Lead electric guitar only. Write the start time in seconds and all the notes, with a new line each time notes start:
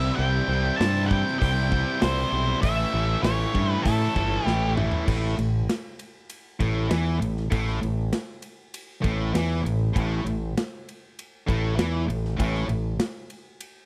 Already playing: E5
0.15 G5
0.76 A5
1.06 F#5 G5
1.39 G5
2.02 C5
2.62 E5
3.23 C#5
3.71 B4
3.83 A4
4.46 G4